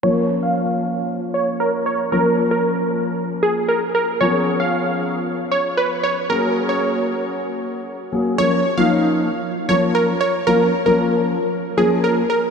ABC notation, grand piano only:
X:1
M:4/4
L:1/16
Q:1/4=115
K:Bbm
V:1 name="Grand piano"
[F,B,DB]16 | [F,B,DB]16 | [F,_CDA]16 | [G,B,DA]12- [G,B,DA]2 [G,B,DA]2 |
[F,B,DB]2 z [F,B,DE]4 z3 [F,B,DB]3 z3 | [F,B,DF]2 z [F,B,DB]4 z3 [F,B,DB]3 z3 |]